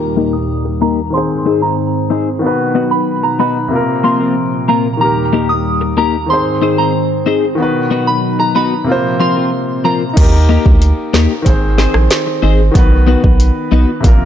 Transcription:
Already playing: D#2 A#2 D#3 G3 A#3 G4 A#4
0.17 A#3 D#4 G4 A#4
0.33 D#6
0.65 muted clean electric guitar stroke
0.81 A#3 D#4 G4 A#4 A#5
1.10 G#2 D#3 C4 C6
1.15 G#4 C5
1.46 C4 D#4 G#4 C5
1.62 C4 D#4 G#4 C5 A#5
2.10 C4 D#4 G#4 C5
2.39 B2 D#3 F#3 B3 D#4
2.44 F#4 B4
2.75 B3 D#4 F#4 B4
2.91 B5
3.23 A#5, muted clean electric guitar stroke
3.39 B3 D#4 F#4 B4 B5
3.68 A#2 C3 F3 A#3 C4
3.73 F4 A#4
4.04 A#3 C4 F4 A#4 C6
4.20 A#3 C4 F4 A#4
4.68 A#3 C4 F4 A#4 A#5
4.97 D#2 D#3 G3 A#3 A#5
5.02 G4 A#4
5.33 A#3 D#4 G4 A#4
5.49 D#6
5.81 muted clean electric guitar stroke
5.97 A#3 D#4 G4 A#4 A#5
6.26 G#2 D#3 C4 C6
6.31 G#4 C5
6.62 C4 D#4 G#4 C5
6.78 C4 D#4 G#4 C5 A#5
7.26 C4 D#4 G#4 C5
7.55 B2 D#3 F#3 B3 D#4
7.60 F#4 B4
7.91 B3 D#4 F#4 B4
8.07 B5
8.39 A#5, muted clean electric guitar stroke
8.55 B3 D#4 F#4 B4 B5
8.84 A#2 C3 F3 A#3 C4
8.89 F4 C5
9.20 F3 C4 F4 A#4 C6
9.36 F3 C4 F4 A#4
9.84 F3 C4 F4 A#4 A#5
10.13 D#2 A#3 D#4, kick, closed hi-hat, crash
10.18 G4 A#4
10.49 A#3 D#4 G4 A#4
10.66 D2, kick
10.82 closed hi-hat
11.13 D#2 A#3 D#4 G4 A#4, snare
11.42 G#1 D#3 C4, kick, closed hi-hat
11.47 G#4 C5
11.78 C4 D#4 G#4 C5, snare
11.94 A#1, cross-stick
12.11 snare, closed hi-hat
12.26 muted clean electric guitar stroke
12.42 G#1 C4 D#4 G#4 C5
12.71 B1 D#3 B3, kick, closed hi-hat
12.76 F#4 B4
13.07 B3 D#4 F#4 B4
13.24 B1, kick
13.40 closed hi-hat
13.71 B1 B3 D#4 F#4 B4
14.00 A#1 C3 A#3, kick, closed hi-hat
14.05 F4 A#4

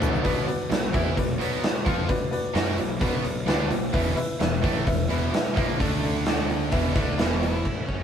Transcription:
0.01 B1 B2 F#3 B3 D4 F#4 A4 B4 D5, floor tom, shaker
0.13 floor tom, shaker
0.24 B1 B2 F#3 B3 F#4 B4 D5, kick, open hi-hat
0.47 F#4 B4 D5, muted overdriven electric guitar stroke, muted distorted electric guitar stroke, muted picked electric bass stroke, open hi-hat
0.70 B1 B2 F#3 F#4 B4 D5, snare, open hi-hat
0.93 E2 E3 B3 E4 F#4 B4 D5, kick, open hi-hat
1.17 B1 B2 F#3 F#4 B4 D5, kick, open hi-hat
1.39 B1 B2 F#3 B3 F#4 B4 D5, open hi-hat
1.62 F#4 B4 D5, muted overdriven electric guitar stroke, muted picked electric bass stroke, muted distorted electric guitar stroke, snare, open hi-hat
1.76 snare
1.86 F2 F3 C4 F4 F#4 B4 D5, kick, open hi-hat
2.07 F#4 B4 D5, muted overdriven electric guitar stroke, muted distorted electric guitar stroke, muted picked electric bass stroke, kick, open hi-hat
2.31 F#4 B4 D5, open hi-hat
2.54 F#2 F#3 C#4 F#4 B4 D5, snare, open hi-hat
2.77 B1 B2 F#3 F#4 B4 D5, open hi-hat
3.00 B1 B2 F#3 B3 F#4 B4 D5, kick, open hi-hat
3.24 B1 B2 F#3 F#4 B4 D5, open hi-hat
3.47 D2 D3 A3 D4 F#4 B4 D5, snare, open hi-hat
3.69 B1 B2 F#3 F#4 B4 D5, open hi-hat
3.92 E1 E2 B2 E3 E4 B4 E5, kick, open hi-hat
4.16 E4 B4 E5, muted distorted electric guitar stroke, muted overdriven electric guitar stroke, muted picked electric bass stroke, open hi-hat
4.40 E1 E2 B2 E4 B4 E5, snare, open hi-hat
4.63 A1 A2 E3 A3 E4 B4 E5, kick, open hi-hat
4.86 E1 E2 B2 E4 B4 E5, kick, open hi-hat
5.09 E1 E2 B2 E3 E4 B4 E5, open hi-hat
5.31 E4 B4 E5, muted overdriven electric guitar stroke, muted distorted electric guitar stroke, muted picked electric bass stroke, snare, open hi-hat
5.47 snare
5.56 A#1 A#2 F3 A#3 E4 B4 E5, kick, open hi-hat
5.79 D2 D3 A3 D4 A4 D5, kick, open hi-hat
6.03 D4 A4 D5, open hi-hat
6.25 D4 A4 D5, snare, open hi-hat
6.49 D4 A4 D5 F#5, open hi-hat
6.71 E1 E2 B2 E3 E4 B4 E5 G5, kick, open hi-hat
6.95 D2 D3 A3 D4 E4 B4 E5 A5, kick, open hi-hat
7.18 E1 E2 B2 E3 E4 B4 E5 B5, snare, open hi-hat
7.32 snare
7.41 E4 B4 G5, open hi-hat
7.65 A1, kick, crash
7.87 F#2 C#4, kick

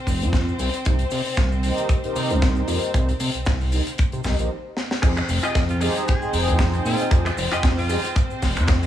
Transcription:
Already playing: C4 C5
0.07 F1, kick, open hi-hat, cabasa
0.22 F2, closed hi-hat, cabasa
0.33 kick, snare, closed hi-hat, cabasa
0.48 cabasa
0.59 C2, open hi-hat, cabasa
0.74 closed hi-hat, cabasa
0.85 C2 D#4 G4 A#4 C5, kick, closed hi-hat, cabasa
0.99 closed hi-hat, cabasa
1.11 C3, open hi-hat, cabasa
1.26 cabasa
1.37 C2, kick, snare, closed hi-hat, cabasa
1.52 cabasa
1.63 D#4 G4 A#4 C5, open hi-hat, cabasa
1.78 closed hi-hat, cabasa
1.89 D#4 G4 A#4 C5, kick, closed hi-hat, cabasa
2.04 D#4 G4 A#4 C5, closed hi-hat, cabasa
2.16 C3, open hi-hat, cabasa
2.30 C2, closed hi-hat, cabasa
2.42 kick, snare, closed hi-hat, cabasa
2.56 cabasa
2.68 F2, open hi-hat, cabasa
2.83 closed hi-hat, cabasa
2.94 C2 D#4 G4 A#4 C5, kick, closed hi-hat, cabasa
3.09 closed hi-hat, cabasa
3.20 C3, open hi-hat, cabasa
3.34 C2, closed hi-hat, cabasa
3.45 C2, kick, snare, closed hi-hat, cabasa
3.61 open hi-hat, cabasa
3.72 D#4 G4 A#4 C5, open hi-hat, cabasa
3.87 closed hi-hat, cabasa
3.98 kick, closed hi-hat, cabasa
4.12 C3, closed hi-hat, cabasa
4.24 C2 D#4 G4 A#4 D#5, kick, snare, open hi-hat, cabasa
4.39 A#1 D#4 G4 A#4 C5, closed hi-hat, cabasa
4.77 snare
4.91 snare
5.02 F2 C4 D#4 G4 G#4 C5, muted clean electric guitar stroke, kick, closed hi-hat, crash, cabasa
5.17 finger snap, muted clean electric guitar stroke, cabasa
5.29 F1, muted clean electric guitar stroke, open hi-hat, cabasa
5.43 F4 G4 G#4 D#5, finger snap, closed hi-hat, cabasa
5.55 F2, kick, snare, closed hi-hat, cabasa
5.69 F4, closed hi-hat, cabasa
5.81 D#4 F4 G4 G#4 C5, muted clean electric guitar stroke, open hi-hat, cabasa
5.95 muted clean electric guitar stroke, closed hi-hat, cabasa
6.07 D#4 G4 G#4 C5, muted clean electric guitar stroke, kick, closed hi-hat, cabasa
6.21 D#4 G#4 C5 G5, cabasa
6.33 F1, open hi-hat, cabasa
6.48 F2, closed hi-hat, cabasa
6.59 muted clean electric guitar stroke, kick, snare, closed hi-hat, cabasa
6.73 muted clean electric guitar stroke, closed hi-hat, cabasa
6.85 A#2 F4, open hi-hat, cabasa
7.00 muted clean electric guitar stroke, closed hi-hat, cabasa
7.11 F2 D#4 G4 G#4 C5, muted clean electric guitar stroke, kick, closed hi-hat, cabasa
7.25 finger snap, muted clean electric guitar stroke, closed hi-hat, cabasa
7.37 F1, muted clean electric guitar stroke, open hi-hat, cabasa
7.52 F2 F4 G4 G#4 D#5, finger snap, closed hi-hat, cabasa
7.63 F2, kick, snare, closed hi-hat, cabasa
7.78 F4, open hi-hat, cabasa
7.89 D#4 G4 G#4 C5, muted clean electric guitar stroke, open hi-hat, cabasa
8.04 muted clean electric guitar stroke, closed hi-hat, cabasa
8.15 muted clean electric guitar stroke, kick, closed hi-hat, cabasa
8.30 cabasa
8.42 F1, kick, snare, open hi-hat, cabasa
8.57 F2, finger snap, closed hi-hat, cabasa
8.68 muted clean electric guitar stroke, kick, snare, closed hi-hat, cabasa
8.82 muted clean electric guitar stroke, closed hi-hat, cabasa

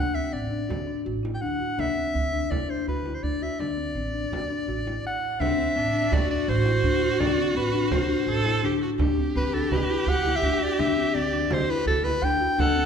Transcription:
Already playing: D2 F#5
0.15 C4 E5
0.32 A1 C4 D5
0.50 D4, frame drum
0.69 D2 F#4, frame drum
0.87 D4, frame drum
1.05 A1 F#4
1.23 E4, frame drum
1.34 G5
1.41 D2 D4 F#5
1.60 F#4, frame drum
1.78 D2 D4 E5, frame drum
2.14 D2 C4
2.33 D4, frame drum
2.50 D2 E4 D5, frame drum
2.68 D4 C5, frame drum
2.87 D2 F#4 B4
3.06 E4, frame drum
3.14 C5
3.23 D2 D4 D5
3.42 F#4 E5, frame drum
3.59 D2 D4 D5, frame drum
3.77 C4
3.95 A1 C4, frame drum
4.13 D4
4.32 D2 F#4, frame drum
4.50 D4
4.68 A1 F#4, frame drum
4.86 E4, frame drum
5.06 F#5
5.40 D2 C4 D4 E5, frame drum
5.58 C4
5.76 A1 C4 D4
5.94 D4, frame drum
6.11 D2 F#4 D5, frame drum
6.30 D4 D5, frame drum
6.48 A1 F#4 C5
6.65 E4, frame drum
6.83 D2 D4
7.01 F#4, frame drum
7.19 D2 D4 D5, frame drum
7.38 C4
7.55 A1 C4 B4
7.73 D4
7.91 D2 F#4 C5, frame drum
8.09 D4, frame drum
8.27 A1 F#4 A4
8.45 E4, frame drum
8.63 D2 D4 G4
8.82 F#4, frame drum
8.99 D2 D4 G4, frame drum
9.18 C4
9.36 D2 C4 B4
9.53 D4 A4, frame drum
9.71 D2 F#4 B4, frame drum
9.90 E4, frame drum
10.06 D2 F#4 F#5
10.26 E4, frame drum
10.36 E5
10.42 D2 D4
10.61 F#4 D5, frame drum
10.79 D2 D4 E5, frame drum
10.96 C4, frame drum
11.14 D2 C4 D5
11.32 D4
11.51 D2 F#4 C5, frame drum
11.69 E4 B4
11.86 D2 F#4 A4
12.04 E4 B4, frame drum
12.22 D2 D4 G5
12.41 F#4, frame drum
12.58 D2 D4 A4 F#5, frame drum
12.76 C4

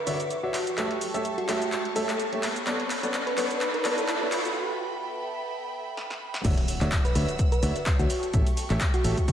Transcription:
Already playing: B4 E5 F#5 C#6 D6, riser
0.07 D3 F#4 C#5 D5 E5, open hi-hat, shaker
0.20 closed hi-hat, shaker
0.30 closed hi-hat, shaker
0.43 F#4 C#5 D5 E5
0.54 G4 A5, clap, open hi-hat, shaker
0.67 closed hi-hat, shaker
0.78 A3 G4 A4 C#5 E5, clap, closed hi-hat, shaker
0.91 closed hi-hat
1.01 open hi-hat, shaker
1.14 A3 G4 A4 C#5 E5, closed hi-hat, shaker
1.25 closed hi-hat, shaker
1.38 F#4, closed hi-hat
1.48 A3 G4 A4 C#5 E5, clap, open hi-hat, shaker
1.62 closed hi-hat, shaker
1.72 clap, closed hi-hat, shaker
1.85 closed hi-hat
1.96 A3 G4 A4 C#5 E5, open hi-hat, shaker
2.09 clap, closed hi-hat, shaker
2.20 closed hi-hat, shaker
2.33 A3 G4 A4 C#5 E5, closed hi-hat
2.43 clap, open hi-hat, shaker
2.56 closed hi-hat, shaker
2.67 B3 A4 B4 C#5 D5 B5, clap, closed hi-hat, shaker
2.80 closed hi-hat
2.90 clap, open hi-hat, shaker
3.03 B3 A4 B4 C#5 D5, closed hi-hat, shaker
3.14 clap, closed hi-hat, shaker
3.27 B4, closed hi-hat
3.37 B3 A4 B4 C#5 D5, clap, open hi-hat, shaker
3.51 closed hi-hat, shaker
3.61 clap, closed hi-hat, shaker
3.74 B4, closed hi-hat
3.85 B3 A4 B4 C#5 D5, clap, open hi-hat, shaker
3.97 A4, closed hi-hat, shaker
4.08 clap, closed hi-hat, shaker
4.21 B3 A4 B4 C#5 D5
4.32 clap, open hi-hat, shaker
4.45 closed hi-hat, shaker
4.56 B3 E5 G5
5.97 snare
6.10 snare
6.34 snare
6.44 D2 D3 F#4 C#5 D5 E5 F#5 E6, kick, closed hi-hat, crash, impact, shaker
6.58 snare, closed hi-hat
6.68 open hi-hat, shaker
6.81 D2 D3 F#4 C#5 D5 E5, snare, clap, closed hi-hat, shaker
6.92 kick, snare, clap, closed hi-hat, shaker
7.05 B4, snare, closed hi-hat, shaker
7.15 D2 D3 F#4 B4 C#5 D5 E5, open hi-hat, shaker
7.29 closed hi-hat, shaker
7.39 kick, closed hi-hat, shaker
7.52 B4, closed hi-hat, shaker
7.63 D2 D3 F#4 C#5 D5 E5, open hi-hat, shaker
7.76 snare, closed hi-hat, shaker
7.86 kick, snare, clap, closed hi-hat, shaker
7.99 D2 F#4 C#5 D5 E5, snare, shaker
8.10 A4 G5 C#6, open hi-hat, shaker
8.23 snare, closed hi-hat, shaker
8.34 A1 A3 G4 A4 C#5 E5, kick, closed hi-hat, shaker
8.47 closed hi-hat, shaker
8.57 snare, open hi-hat, shaker
8.70 A1 A3 G4 A4 C#5 E5, snare, clap, closed hi-hat, shaker
8.81 kick, snare, clap, closed hi-hat, shaker
8.94 F#4, snare, closed hi-hat, shaker
9.04 A1 A3 G4 A4 C#5 E5, open hi-hat, shaker
9.17 kick, closed hi-hat, shaker
9.28 kick, closed hi-hat, shaker

